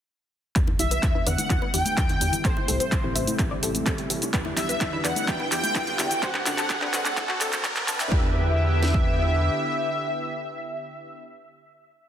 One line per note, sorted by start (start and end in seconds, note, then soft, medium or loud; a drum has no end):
0.56 0.75 E2 loud
0.56 2.43 D3 medium
0.56 0.66 E3 medium
0.56 6.19 G3 medium
0.56 2.43 B3 medium
0.56 0.66 D4 medium
0.56 0.66 E4 medium
0.56 6.19 E4 medium
0.56 0.66 G4 loud
0.56 0.63 B4 loud
0.56 kick loud
0.56 clap soft
0.56 closed hi-hat medium
0.56 riser medium
0.56 shaker soft
0.67 0.75 E4 medium
0.67 high bongo medium
0.79 0.98 B1 medium
0.79 1.12 E3 medium
0.79 1.12 D4 medium
0.79 1.12 E4 medium
0.79 0.87 E4 medium
0.79 1.12 G4 medium
0.79 1.28 E5 loud
0.79 open hi-hat loud
0.79 low conga medium
0.79 shaker medium
0.91 0.98 B4 medium
0.91 closed hi-hat soft
0.91 shaker soft
1.03 1.22 E2 medium
1.03 1.10 E4 medium
1.03 kick loud
1.03 clap soft
1.03 closed hi-hat medium
1.03 shaker soft
1.15 1.24 E3 medium
1.15 1.24 D4 medium
1.15 1.22 E4 medium
1.15 1.24 E4 medium
1.15 1.24 B4 medium
1.27 1.36 E2 loud
1.27 1.37 E3 medium
1.27 1.37 D4 medium
1.27 1.37 E4 medium
1.27 1.37 B4 medium
1.27 1.34 D5 medium
1.27 1.73 F#5 loud
1.27 open hi-hat loud
1.27 shaker medium
1.38 1.46 E4 medium
1.38 closed hi-hat medium
1.38 high conga medium
1.38 shaker soft
1.50 1.60 E2 medium
1.50 1.60 E3 medium
1.50 1.60 D4 medium
1.50 1.60 E4 medium
1.50 1.58 E4 medium
1.50 1.60 F#4 medium
1.50 kick loud
1.50 clap soft
1.50 closed hi-hat medium
1.50 shaker soft
1.62 2.35 B4 medium
1.62 high bongo medium
1.74 1.83 E2 medium
1.74 1.84 E3 medium
1.74 1.84 D4 medium
1.74 1.84 E4 medium
1.74 1.84 G4 loud
1.74 2.46 G5 loud
1.74 open hi-hat loud
1.74 shaker medium
1.85 closed hi-hat medium
1.85 high conga medium
1.85 shaker soft
1.97 2.16 E2 medium
1.97 2.08 E3 medium
1.97 2.08 D4 medium
1.97 2.08 E4 medium
1.97 2.08 F#4 loud
1.97 kick loud
1.97 clap medium
1.97 closed hi-hat medium
1.97 shaker soft
2.09 closed hi-hat soft
2.09 high bongo medium
2.21 2.30 E2 medium
2.21 2.37 D4 medium
2.21 2.37 E4 medium
2.21 2.37 G4 medium
2.21 open hi-hat loud
2.21 shaker medium
2.33 closed hi-hat medium
2.33 low conga medium
2.33 shaker soft
2.45 2.54 A1 medium
2.45 2.55 A2 medium
2.45 4.32 C3 medium
2.45 4.32 A3 medium
2.45 2.55 C4 medium
2.45 2.55 G4 medium
2.45 2.55 A4 loud
2.45 2.52 C5 loud
2.45 3.39 C5 medium
2.45 kick loud
2.45 clap medium
2.45 closed hi-hat medium
2.45 shaker soft
2.57 2.64 E4 medium
2.57 high bongo medium
2.68 2.78 C2 loud
2.68 3.01 A2 medium
2.68 3.01 C4 medium
2.68 2.76 E4 medium
2.68 3.01 G4 medium
2.68 3.01 A4 medium
2.68 open hi-hat loud
2.68 shaker medium
2.80 2.87 C5 medium
2.80 closed hi-hat soft
2.80 shaker soft
2.92 3.11 A1 medium
2.92 2.99 E4 medium
2.92 kick loud
2.92 clap medium
2.92 closed hi-hat medium
2.92 shaker soft
3.04 3.13 A2 medium
3.04 3.13 C4 medium
3.04 3.11 E4 medium
3.04 3.13 G4 medium
3.04 3.13 C5 medium
3.16 3.25 A1 medium
3.16 3.26 A2 medium
3.16 3.26 C4 medium
3.16 3.26 G4 medium
3.16 3.26 C5 medium
3.16 3.23 E5 medium
3.16 open hi-hat loud
3.16 shaker medium
3.27 3.35 E4 medium
3.27 closed hi-hat medium
3.27 high conga medium
3.27 shaker soft
3.39 3.58 A1 loud
3.39 3.49 A2 medium
3.39 3.49 C4 medium
3.39 3.47 E4 medium
3.39 3.49 G4 medium
3.39 3.49 A4 medium
3.39 kick loud
3.39 clap medium
3.39 closed hi-hat medium
3.39 shaker soft
3.51 4.24 D5 medium
3.63 3.82 A1 medium
3.63 3.73 A2 loud
3.63 3.73 C4 medium
3.63 3.73 G4 medium
3.63 3.73 A4 loud
3.63 open hi-hat loud
3.63 shaker medium
3.75 closed hi-hat medium
3.75 high conga medium
3.75 shaker soft
3.86 3.96 A1 loud
3.86 3.97 A2 medium
3.86 3.97 C4 medium
3.86 3.97 G4 medium
3.86 3.97 A4 loud
3.86 kick loud
3.86 clap medium
3.86 closed hi-hat medium
3.86 shaker soft
3.98 closed hi-hat soft
4.10 4.19 A1 medium
4.10 4.26 C4 medium
4.10 4.26 G4 medium
4.10 4.26 A4 medium
4.10 open hi-hat loud
4.10 shaker medium
4.22 closed hi-hat soft
4.22 high bongo medium
4.22 shaker soft
4.34 4.52 E2 loud
4.34 8.08 D3 medium
4.34 4.44 E3 medium
4.34 6.21 B3 medium
4.34 4.44 D4 medium
4.34 4.44 E4 medium
4.34 4.44 G4 loud
4.34 4.41 B4 loud
4.34 kick loud
4.34 clap medium
4.34 closed hi-hat medium
4.34 shaker soft
4.45 4.53 E4 medium
4.45 high bongo medium
4.57 4.76 B1 medium
4.57 4.90 E3 medium
4.57 4.90 D4 medium
4.57 4.65 E4 medium
4.57 4.90 E4 medium
4.57 4.90 G4 medium
4.57 5.06 E5 loud
4.57 clap medium
4.57 open hi-hat loud
4.57 low conga medium
4.57 shaker medium
4.69 4.76 B4 medium
4.69 closed hi-hat medium
4.69 shaker soft
4.81 5.00 E2 medium
4.81 4.88 E4 medium
4.81 kick loud
4.81 clap medium
4.81 closed hi-hat medium
4.81 shaker soft
4.93 5.02 E3 medium
4.93 5.02 D4 medium
4.93 5.02 E4 medium
4.93 5.00 E4 medium
4.93 5.02 B4 medium
5.05 5.14 E2 loud
5.05 5.15 E3 medium
5.05 5.15 D4 medium
5.05 5.15 E4 medium
5.05 5.15 B4 loud
5.05 5.12 D5 medium
5.05 5.30 F#5 loud
5.05 clap medium
5.05 open hi-hat loud
5.05 shaker medium
5.16 5.24 E4 medium
5.16 closed hi-hat medium
5.16 high conga medium
5.16 shaker soft
5.28 5.38 E2 medium
5.28 5.38 E3 medium
5.28 5.38 D4 medium
5.28 5.38 E4 medium
5.28 5.36 E4 medium
5.28 5.38 F#4 medium
5.28 5.51 G5 loud
5.28 kick loud
5.28 clap medium
5.28 closed hi-hat medium
5.28 shaker soft
5.40 6.13 B4 medium
5.40 high bongo medium
5.52 5.61 E2 medium
5.52 5.62 E3 loud
5.52 5.62 D4 medium
5.52 5.62 E4 medium
5.52 5.62 G4 loud
5.52 6.24 G5 loud
5.52 clap medium
5.52 open hi-hat loud
5.52 shaker medium
5.63 closed hi-hat medium
5.63 high conga medium
5.63 shaker soft
5.75 5.94 E2 medium
5.75 5.86 E3 medium
5.75 5.86 D4 medium
5.75 5.86 E4 medium
5.75 5.86 F#4 loud
5.75 kick loud
5.75 clap medium
5.75 closed hi-hat medium
5.75 shaker soft
5.87 closed hi-hat soft
5.87 high bongo medium
5.99 6.08 E2 medium
5.99 6.15 D3 medium
5.99 6.15 D4 medium
5.99 6.15 E4 medium
5.99 6.15 G4 medium
5.99 clap medium
5.99 open hi-hat loud
5.99 shaker medium
6.11 closed hi-hat soft
6.11 low conga medium
6.11 shaker soft
6.23 6.32 D2 medium
6.23 6.33 D3 loud
6.23 8.10 A3 medium
6.23 8.10 C4 medium
6.23 6.33 C4 medium
6.23 6.33 D4 medium
6.23 8.10 F#4 medium
6.23 6.33 F#4 loud
6.23 6.30 C5 loud
6.23 7.64 F#5 loud
6.23 kick loud
6.23 clap medium
6.23 closed hi-hat medium
6.23 shaker soft
6.34 6.42 D4 medium
6.34 clap medium
6.34 high bongo medium
6.46 6.56 F#2 loud
6.46 6.79 D3 medium
6.46 6.79 C4 medium
6.46 6.54 D4 medium
6.46 6.79 D4 medium
6.46 6.79 F#4 medium
6.46 clap medium
6.46 open hi-hat loud
6.46 shaker medium
6.58 6.65 A4 medium
6.58 clap medium
6.58 closed hi-hat soft
6.58 shaker soft
6.70 6.89 D2 medium
6.70 6.77 D4 medium
6.70 kick loud
6.70 clap medium
6.70 closed hi-hat medium
6.70 shaker soft
6.82 6.91 D3 medium
6.82 6.91 C4 medium
6.82 6.89 D4 medium
6.82 6.91 D4 medium
6.82 6.91 B4 medium
6.82 clap medium
6.93 7.03 D2 medium
6.93 7.04 D3 medium
6.93 7.04 C4 medium
6.93 7.04 D4 medium
6.93 7.01 F#4 medium
6.93 7.04 B4 medium
6.93 clap loud
6.93 open hi-hat loud
6.93 shaker medium
7.05 7.13 D4 medium
7.05 clap medium
7.05 closed hi-hat medium
7.05 high conga medium
7.05 shaker soft
7.17 7.36 D2 loud
7.17 7.27 D3 medium
7.17 7.27 C4 medium
7.17 7.24 D4 medium
7.17 7.27 D4 medium
7.17 7.27 E4 medium
7.17 kick loud
7.17 clap loud
7.17 closed hi-hat medium
7.17 shaker soft
7.29 8.02 F#4 medium
7.29 clap medium
7.41 7.60 D2 medium
7.41 7.57 D3 loud
7.41 7.57 C4 medium
7.41 7.57 D4 medium
7.41 7.57 A4 loud
7.41 clap loud
7.41 open hi-hat loud
7.41 shaker medium
7.53 clap medium
7.53 closed hi-hat soft
7.53 high conga medium
7.53 shaker soft
7.64 7.83 D2 medium
7.64 7.81 D3 medium
7.64 7.81 C4 medium
7.64 7.81 D4 medium
7.64 7.81 A4 loud
7.64 kick loud
7.64 clap loud
7.64 closed hi-hat medium
7.64 shaker soft
7.76 clap loud
7.76 closed hi-hat soft
7.88 8.07 D2 medium
7.88 7.98 C4 medium
7.88 7.98 D4 medium
7.88 7.98 A4 medium
7.88 clap loud
7.88 open hi-hat loud
7.88 shaker medium
7.99 8.10 C4 medium
7.99 8.10 D4 medium
7.99 8.10 E4 loud
7.99 clap loud
7.99 closed hi-hat soft
7.99 high bongo medium
7.99 shaker soft
8.12 9.49 E2 loud
8.12 11.23 D3 medium
8.12 11.23 B3 medium
8.12 11.23 D4 medium
8.12 11.23 E4 medium
8.12 11.23 G4 medium
8.12 11.23 G4 loud
8.12 11.23 E5 loud
8.12 kick loud
8.83 snare medium
8.94 kick medium